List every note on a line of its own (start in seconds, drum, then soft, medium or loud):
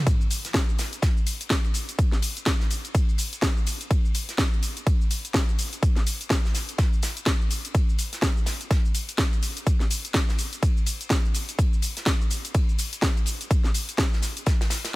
0.07 kick loud
0.07 closed hi-hat medium
0.07 ride medium
0.07 shaker soft
0.21 shaker soft
0.31 open hi-hat loud
0.31 ride medium
0.31 shaker medium
0.45 snare soft
0.45 closed hi-hat medium
0.45 shaker soft
0.54 kick loud
0.54 snare loud
0.54 closed hi-hat medium
0.54 ride medium
0.54 shaker soft
0.69 shaker soft
0.79 snare loud
0.79 open hi-hat medium
0.79 ride medium
0.79 shaker medium
0.93 closed hi-hat medium
0.93 shaker soft
1.02 kick loud
1.02 snare loud
1.02 closed hi-hat medium
1.02 ride medium
1.02 shaker soft
1.17 shaker soft
1.26 open hi-hat loud
1.26 ride medium
1.26 shaker medium
1.41 closed hi-hat medium
1.41 shaker soft
1.50 kick loud
1.50 snare loud
1.50 closed hi-hat medium
1.50 ride medium
1.50 shaker soft
1.64 ride soft
1.64 shaker soft
1.74 open hi-hat medium
1.74 ride medium
1.74 shaker medium
1.89 closed hi-hat medium
1.89 shaker soft
1.99 kick loud
1.99 closed hi-hat medium
1.99 ride medium
1.99 shaker soft
2.12 snare soft
2.12 ride soft
2.12 shaker soft
2.22 open hi-hat loud
2.22 ride medium
2.22 shaker medium
2.37 closed hi-hat medium
2.37 shaker soft
2.46 kick loud
2.46 snare loud
2.46 closed hi-hat medium
2.46 ride medium
2.46 shaker soft
2.60 snare medium
2.60 shaker soft
2.70 open hi-hat medium
2.70 ride medium
2.70 shaker medium
2.85 closed hi-hat medium
2.85 shaker soft
2.95 kick loud
2.95 closed hi-hat medium
2.95 ride medium
2.95 shaker soft
3.09 shaker soft
3.18 open hi-hat loud
3.18 ride medium
3.18 shaker medium
3.33 closed hi-hat medium
3.33 shaker soft
3.42 kick loud
3.42 snare loud
3.42 closed hi-hat medium
3.42 ride medium
3.42 shaker soft
3.57 shaker soft
3.67 open hi-hat loud
3.67 ride medium
3.67 shaker medium
3.81 closed hi-hat medium
3.81 shaker soft
3.91 kick loud
3.91 closed hi-hat medium
3.91 ride medium
3.91 shaker soft
4.05 shaker soft
4.15 open hi-hat loud
4.15 ride medium
4.15 shaker medium
4.29 snare soft
4.29 closed hi-hat medium
4.29 shaker soft
4.38 kick loud
4.38 snare loud
4.38 closed hi-hat medium
4.38 ride medium
4.38 shaker soft
4.53 shaker soft
4.63 open hi-hat loud
4.63 ride medium
4.63 shaker medium
4.77 closed hi-hat medium
4.77 shaker soft
4.87 kick loud
4.87 closed hi-hat medium
4.87 ride medium
4.87 shaker soft
5.01 shaker soft
5.11 open hi-hat loud
5.11 ride medium
5.11 shaker medium
5.25 closed hi-hat medium
5.25 shaker soft
5.34 kick loud
5.34 snare loud
5.34 closed hi-hat medium
5.34 ride medium
5.34 shaker soft
5.49 ride soft
5.49 shaker soft
5.59 open hi-hat loud
5.59 ride medium
5.59 shaker medium
5.73 closed hi-hat medium
5.73 shaker soft
5.83 kick loud
5.83 closed hi-hat medium
5.83 ride medium
5.83 shaker soft
5.96 snare soft
5.96 ride soft
5.96 shaker soft
6.07 open hi-hat loud
6.07 ride medium
6.07 shaker medium
6.21 closed hi-hat medium
6.21 shaker soft
6.30 kick loud
6.30 snare loud
6.30 closed hi-hat soft
6.30 ride medium
6.30 shaker soft
6.45 snare medium
6.45 shaker soft
6.54 snare medium
6.54 open hi-hat medium
6.54 ride medium
6.54 shaker medium
6.69 closed hi-hat medium
6.69 shaker soft
6.78 kick loud
6.78 snare loud
6.78 closed hi-hat soft
6.78 ride medium
6.78 shaker soft
6.93 shaker soft
7.03 snare loud
7.03 open hi-hat loud
7.03 ride medium
7.03 shaker medium
7.17 closed hi-hat medium
7.17 shaker soft
7.26 kick loud
7.26 snare loud
7.26 closed hi-hat medium
7.26 ride medium
7.26 shaker soft
7.41 shaker soft
7.51 open hi-hat loud
7.51 ride medium
7.51 shaker medium
7.65 closed hi-hat medium
7.65 shaker soft
7.74 kick loud
7.74 closed hi-hat medium
7.74 ride medium
7.74 shaker soft
7.89 shaker soft
7.99 open hi-hat loud
7.99 ride medium
7.99 shaker medium
8.13 snare soft
8.13 closed hi-hat medium
8.13 shaker soft
8.22 kick loud
8.22 snare loud
8.22 closed hi-hat medium
8.22 ride medium
8.22 shaker soft
8.37 shaker soft
8.46 snare loud
8.46 open hi-hat medium
8.46 ride medium
8.46 shaker medium
8.61 closed hi-hat medium
8.61 shaker soft
8.71 kick loud
8.71 snare loud
8.71 closed hi-hat soft
8.71 ride medium
8.71 shaker soft
8.85 shaker soft
8.94 open hi-hat loud
8.94 ride medium
8.94 shaker medium
9.09 closed hi-hat medium
9.09 shaker soft
9.18 kick loud
9.18 snare loud
9.18 closed hi-hat medium
9.18 ride medium
9.18 shaker soft
9.33 ride soft
9.33 shaker soft
9.43 open hi-hat loud
9.43 ride medium
9.43 shaker medium
9.57 closed hi-hat medium
9.57 shaker soft
9.67 kick loud
9.67 closed hi-hat medium
9.67 ride medium
9.67 shaker soft
9.80 snare soft
9.80 ride soft
9.80 shaker soft
9.91 open hi-hat loud
9.91 ride medium
9.91 shaker medium
10.05 closed hi-hat medium
10.05 shaker soft
10.14 kick loud
10.14 snare loud
10.14 closed hi-hat medium
10.14 ride medium
10.14 shaker soft
10.29 snare medium
10.29 shaker soft
10.39 open hi-hat medium
10.39 ride medium
10.39 shaker medium
10.53 closed hi-hat medium
10.53 shaker soft
10.63 kick loud
10.63 closed hi-hat medium
10.63 ride medium
10.63 shaker soft
10.77 shaker soft
10.86 open hi-hat loud
10.86 ride medium
10.86 shaker medium
11.01 closed hi-hat medium
11.01 shaker soft
11.10 kick loud
11.10 snare loud
11.10 closed hi-hat medium
11.10 ride medium
11.10 shaker soft
11.25 shaker soft
11.34 open hi-hat medium
11.34 ride medium
11.34 shaker medium
11.49 closed hi-hat medium
11.49 shaker soft
11.59 kick loud
11.59 closed hi-hat medium
11.59 ride medium
11.59 shaker soft
11.73 shaker soft
11.82 open hi-hat loud
11.82 ride medium
11.82 shaker medium
11.97 snare soft
11.97 closed hi-hat medium
11.97 shaker soft
12.06 kick loud
12.06 snare loud
12.06 closed hi-hat medium
12.06 ride medium
12.06 shaker soft
12.21 shaker soft
12.31 open hi-hat medium
12.31 ride medium
12.31 shaker medium
12.45 closed hi-hat medium
12.45 shaker soft
12.54 kick loud
12.54 closed hi-hat medium
12.54 ride medium
12.54 shaker soft
12.69 shaker soft
12.79 open hi-hat loud
12.79 ride medium
12.79 shaker medium
12.93 closed hi-hat medium
12.93 shaker soft
13.02 kick loud
13.02 snare loud
13.02 closed hi-hat medium
13.02 ride medium
13.02 shaker soft
13.17 ride soft
13.17 shaker soft
13.26 open hi-hat medium
13.26 ride medium
13.26 shaker medium
13.41 closed hi-hat medium
13.41 shaker soft
13.51 kick loud
13.51 closed hi-hat medium
13.51 ride medium
13.51 shaker soft
13.64 snare soft
13.64 ride soft
13.64 shaker soft
13.74 open hi-hat loud
13.74 ride medium
13.74 shaker medium
13.89 closed hi-hat medium
13.89 shaker soft
13.98 kick loud
13.98 snare loud
13.98 closed hi-hat medium
13.98 ride medium
13.98 shaker soft
14.13 snare medium
14.13 shaker soft
14.22 snare medium
14.22 open hi-hat medium
14.22 ride medium
14.22 shaker medium
14.37 closed hi-hat medium
14.37 shaker soft
14.46 kick loud
14.46 snare loud
14.46 closed hi-hat medium
14.46 ride medium
14.46 shaker soft
14.61 snare loud
14.61 ride medium
14.61 shaker soft
14.70 snare loud
14.70 open hi-hat loud
14.70 ride medium
14.70 shaker medium
14.85 snare loud
14.85 closed hi-hat medium
14.85 ride medium
14.85 shaker soft